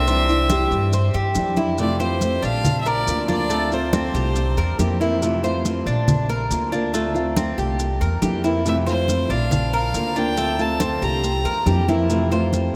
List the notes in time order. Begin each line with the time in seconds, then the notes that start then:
Already playing: C2 E5
0.07 C3 E3 G3 C4 D4 E4, high conga, maracas
0.28 E3 G3 D4 E4, high conga, maracas
0.50 E3 G3 D4 E4 G4, high conga, maracas
0.71 G2, high conga, maracas
0.92 C5, muted nylon-string guitar stroke, high conga, maracas
1.14 G2 G4, high conga, maracas
1.35 F2 E3 G3 D4 E4, high conga, maracas
1.56 E3 G3 D4 E4, high conga, maracas
1.78 C3 E3 A3 C4 F4 D5, high conga, maracas
2.00 E3 A3 C4 F4 C5, high conga, maracas
2.21 A3 C4 F4, high conga, maracas
2.42 A#1 D4 F5, high conga, maracas
2.65 muted nylon-string guitar stroke, high conga, low conga, maracas
2.81 E5
2.86 A#4 D5, high conga, maracas
3.07 D2 D3 A#3 D4 F4, high conga, maracas
3.28 A#3 D4 F4 D5, high conga, maracas
3.49 D3 A3 C4 F4, high conga, maracas
3.72 A3 C4 F4 C5, high conga, maracas
3.93 D3 A3 C4 F4, high conga, maracas
4.14 C2 G4, high conga, maracas
4.36 muted nylon-string guitar stroke, high conga, maracas
4.57 E2 A#4, high conga, maracas
4.78 F2 E3 A#3 C4 E4 G4, high conga, maracas
5.00 E3 A#3 C4 E4, maracas
5.21 C3 E3 A3 C4 F4, high conga, maracas
5.43 E3 A3 C4 F4 C5, high conga, maracas
5.65 A3 C4 F4, high conga, maracas
5.86 A#1 D4, high conga, maracas
6.08 muted nylon-string guitar stroke, high conga, low conga, maracas
6.29 A#4, high conga, maracas
6.50 D2 D3 A#3 D4 F4, high conga, maracas
6.72 A#3 D4 F4, maracas
6.93 D3 A3 C4 F4, high conga, maracas
7.14 A3 C4 F4, high conga, maracas
7.36 D3 A3 C4 F4, high conga, maracas
7.58 C2 G4, high conga, maracas
7.79 muted nylon-string guitar stroke, high conga, maracas
8.01 E2 A#4, high conga, maracas
8.22 F2 E3 A#3 C4 E4 G4, high conga, maracas
8.44 E3 A#3 C4 E4, maracas
8.65 C3 E3 A3 C4 F4 E5, high conga, maracas
8.86 E3 A3 C4 F4 C5, high conga, maracas
9.08 A3 C4 F4, high conga, maracas
9.30 A#1 D4 F5, high conga, maracas
9.51 muted nylon-string guitar stroke, high conga, low conga, maracas
9.73 A#4 F5, high conga, maracas
9.94 D2 D3 A#3 D4 F4, high conga, maracas
10.16 A#3 D4 F4 G5, maracas
10.37 D3 A3 C4 F4, high conga, maracas
10.59 A3 C4 F4 A5, high conga, maracas
10.80 D3 A3 C4 F4, high conga, maracas
11.02 C2 G4 A#5, high conga, maracas
11.23 muted nylon-string guitar stroke, high conga, maracas
11.45 E2 A#4, high conga, maracas
11.66 F2 E3 A#3 C4 E4 G4, high conga, maracas
11.88 E3 A#3 C4 E4, high conga, maracas
12.10 C3 E3 A3 C4 F4, high conga, maracas
12.31 E3 A3 C4 F4 C5, high conga, maracas
12.53 A3 C4 F4, high conga, maracas